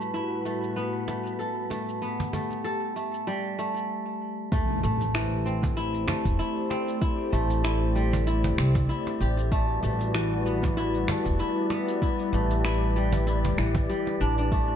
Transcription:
Already playing: analog synth pad A2 G3 E4 F#4 B4, kora A3 A4, synth texture B5
0.01 shaker
0.14 kora E4, shaker
0.45 kora A3, shaker
0.64 shaker
0.76 kora B3, shaker
1.08 kora A3, cajon slap, shaker
1.26 shaker
1.39 kora A4, shaker
1.70 kora A3, cajon slap, shaker
1.89 shaker
2.02 kora B3, analog synth pad G4, shaker
2.20 cajon bass
2.33 kora A3, cajon bass, shaker
2.51 cajon slap, shaker
2.64 kora A4, shaker
2.96 kora A3, shaker
3.14 shaker
3.27 kora G3, shaker
3.59 kora A3, shaker
3.77 shaker
4.52 kora A3, analog synth pad A3 E4 G4 C5, synth texture D5, kick, open hi-hat, impact, shaker
4.83 upright bass A1, kora A3, cajon slap, shaker
5.01 cajon slap, open hi-hat, shaker
5.14 kora E3, finger snap, open hi-hat, shaker
5.46 kora C4, shaker
5.63 kick, cajon bass, open hi-hat, shaker
5.77 kora E4, open hi-hat, shaker
5.95 open hi-hat
6.08 kora A3, finger snap, cajon bass, cajon slap, shaker
6.25 upright bass E1, kick, open hi-hat, shaker
6.39 kora E4, open hi-hat, shaker
6.70 kora C4, cajon slap, shaker
6.88 open hi-hat, shaker
7.01 kora E4, kick, open hi-hat, shaker
7.32 upright bass A1, kora A3, cajon slap, shaker
7.50 cajon slap, open hi-hat, shaker
7.64 kora E4, finger snap, open hi-hat, shaker
7.95 kora G3, shaker
8.13 cajon bass, open hi-hat, shaker
8.27 kora E4, open hi-hat, shaker
8.44 cajon bass, open hi-hat
8.58 upright bass C2, kora C4, finger snap, shaker
8.75 cajon bass, kick, open hi-hat, shaker
8.89 kora E4, open hi-hat, shaker
9.07 cajon slap
9.20 upright bass A1, kora G4, shaker
9.37 cajon slap, open hi-hat, shaker
9.52 analog synth pad G3 F#4 B4, kora A3, kick, open hi-hat, shaker
9.83 upright bass A1, kora A3, cajon slap, shaker
10.01 cajon slap, open hi-hat, shaker
10.14 kora E3, finger snap, open hi-hat, shaker
10.46 kora B3, shaker
10.63 kick, cajon bass, open hi-hat, shaker
10.77 kora E4, open hi-hat, shaker
10.95 open hi-hat
11.08 kora A3, finger snap, cajon bass, cajon slap, shaker
11.26 upright bass E1, kick, open hi-hat, shaker
11.39 kora E4, open hi-hat, shaker
11.70 kora B3, cajon slap, shaker
11.88 open hi-hat, shaker
12.02 kora E4, analog synth pad G4, kick, open hi-hat, shaker
12.20 open hi-hat
12.33 upright bass A1, kora A3, cajon slap, shaker
12.51 cajon slap, open hi-hat, shaker
12.65 kora E4, finger snap, open hi-hat, shaker
12.96 kora G3, shaker
13.13 cajon bass, open hi-hat, shaker
13.27 kora E4, open hi-hat, shaker
13.44 cajon bass, open hi-hat
13.58 upright bass A1, kora E3, finger snap, shaker
13.75 cajon bass, kick, open hi-hat, shaker
13.90 kora G3, open hi-hat, shaker
14.07 cajon slap
14.21 upright bass A1, kora D4, shaker
14.38 kora D4, cajon slap, open hi-hat, shaker
14.52 kora A3, analog synth pad A3 G4 C5, kick, open hi-hat, shaker

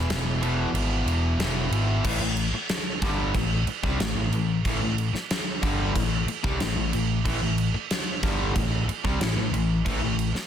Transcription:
Already playing: distorted electric guitar E2 B2 E3
0.10 picked electric bass E1, snare, crash
0.42 distorted electric guitar E2 B2 E3, crash
0.74 picked electric bass G#1, crash
1.06 picked electric bass E1, crash
1.39 picked electric bass E1, distorted electric guitar E2 B2 E3, snare, crash
1.71 picked electric bass G#1, crash
2.04 picked electric bass A1, distorted electric guitar A2 E3, kick, crash
2.20 picked electric bass A1, distorted electric guitar A2 E3
2.37 crash
2.53 muted picked electric bass stroke, muted distorted electric guitar stroke, muted overdriven electric guitar stroke
2.69 snare, crash
3.02 picked electric bass G1, distorted electric guitar G2 D3 G3, kick, snare, crash
3.34 picked electric bass A1, distorted electric guitar A2 E3, kick, crash
3.67 muted picked electric bass stroke, muted distorted electric guitar stroke, muted overdriven electric guitar stroke, crash
3.83 picked electric bass C2, distorted electric guitar C3 G3, kick
3.99 picked electric bass A1, distorted electric guitar A2 E3, snare, crash
4.15 picked electric bass A1, distorted electric guitar A2 E3
4.31 picked electric bass A1, distorted electric guitar A2 E3, crash
4.65 picked electric bass A1, distorted electric guitar A2 E3, kick, crash
4.80 picked electric bass A1, distorted electric guitar A2 E3
4.98 crash
5.13 muted picked electric bass stroke, muted distorted electric guitar stroke, muted overdriven electric guitar stroke, snare
5.30 snare, crash
5.62 picked electric bass G1, distorted electric guitar G2 D3 G3, kick, crash
5.95 picked electric bass A1, distorted electric guitar A2 E3, kick, crash
6.27 muted picked electric bass stroke, muted distorted electric guitar stroke, muted overdriven electric guitar stroke, crash
6.43 picked electric bass C2, distorted electric guitar C3 G3, kick
6.60 picked electric bass A1, distorted electric guitar A2 E3, snare, crash
6.76 picked electric bass A1, distorted electric guitar A2 E3
6.92 picked electric bass A1, distorted electric guitar A2 E3, crash
7.25 picked electric bass A1, distorted electric guitar A2 E3, kick, crash
7.41 picked electric bass A1, distorted electric guitar A2 E3
7.58 crash
7.74 muted picked electric bass stroke, muted distorted electric guitar stroke, muted overdriven electric guitar stroke
7.91 snare, crash
8.23 picked electric bass G1, distorted electric guitar G2 D3 G3, kick, snare, crash
8.55 picked electric bass A1, distorted electric guitar A2 E3, kick, crash
8.88 muted distorted electric guitar stroke, muted overdriven electric guitar stroke, muted picked electric bass stroke, crash
9.04 picked electric bass C2, distorted electric guitar C3 G3, kick
9.20 picked electric bass A1, distorted electric guitar A2 E3, snare, crash
9.37 picked electric bass A1, distorted electric guitar A2 E3
9.53 picked electric bass A1, distorted electric guitar A2 E3, crash
9.85 picked electric bass A1, distorted electric guitar A2 E3, kick, crash
10.01 picked electric bass A1, distorted electric guitar A2 E3
10.19 crash
10.34 muted overdriven electric guitar stroke, muted picked electric bass stroke, muted distorted electric guitar stroke, snare

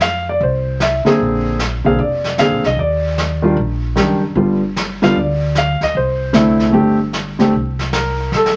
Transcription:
Already playing: upright bass F2
0.00 grand piano F5, snare, hi-hat pedal
0.29 grand piano D5
0.40 upright bass C2, grand piano C5, brush sweep
0.80 grand piano E5, snare, hi-hat pedal
1.05 grand piano D3 A#3 C4 G#4, muted upright bass stroke, snare
1.19 upright bass A#1, brush sweep
1.59 snare, hi-hat pedal
1.85 upright bass B1, grand piano D3 A#3 C4 G#4 F5
1.98 upright bass F1, grand piano D5, brush sweep
2.24 snare
2.38 grand piano D3 A#3 C4 G#4 F5, snare, hi-hat pedal
2.51 upright bass A#1
2.64 upright bass C2, grand piano D#5, snare
2.77 upright bass D#2, grand piano D5, brush sweep
3.18 snare, hi-hat pedal
3.42 grand piano D#3 G3 D4 F4
3.57 upright bass A#1, brush sweep
3.96 upright bass F#1, grand piano D#3 G3 D4 G4, snare, hi-hat pedal
4.35 upright bass G1, grand piano D3 G3 B3 F4, brush sweep
4.76 snare, hi-hat pedal
5.02 grand piano D3 G3 B3 F4 F5, snare
5.15 upright bass D2, grand piano D5, brush sweep
5.55 grand piano F5, snare, hi-hat pedal
5.81 upright bass D2, grand piano D#5, snare
5.94 upright bass C2, grand piano C5, brush sweep
6.33 grand piano D3 A3 C4 E4, snare, hi-hat pedal
6.59 snare
6.72 upright bass G1, grand piano D3 A3 C4 G4, brush sweep
7.13 snare, hi-hat pedal
7.39 grand piano D3 A3 C4 G4, snare
7.53 upright bass C2, brush sweep
7.79 snare
7.93 grand piano A#4, snare, hi-hat pedal
8.32 upright bass G1, snare
8.37 grand piano A4
8.46 snare

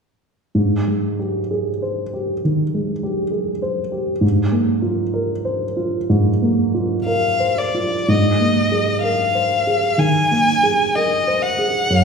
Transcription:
0.55 grand piano G#2
0.88 grand piano G#3
1.19 grand piano G4
1.51 grand piano G#4
1.82 grand piano C5
2.13 grand piano G4
2.45 grand piano D#3
2.74 grand piano G#3
3.03 grand piano G4
3.32 grand piano G#4
3.62 grand piano C5
3.92 grand piano G4
4.21 grand piano G#2
4.52 grand piano A#3
4.82 grand piano F4
5.14 grand piano A#4
5.45 grand piano C5
5.77 grand piano F4
6.10 grand piano G#2
6.42 grand piano A#3
6.74 grand piano F4
7.06 grand piano A#4, violin F5
7.40 grand piano C5
7.59 violin D5
7.75 grand piano F4
8.08 grand piano G#2, violin D#5
8.40 grand piano A#3
8.72 grand piano G#4
9.03 grand piano A#4, violin F5
9.35 grand piano C5
9.67 grand piano G#4
9.98 grand piano D#3, violin G#5
10.31 grand piano A#3
10.63 grand piano G#4
10.95 grand piano A#4, violin D#5
11.27 grand piano C5
11.43 violin F#5
11.59 grand piano G#4
11.90 grand piano F#2

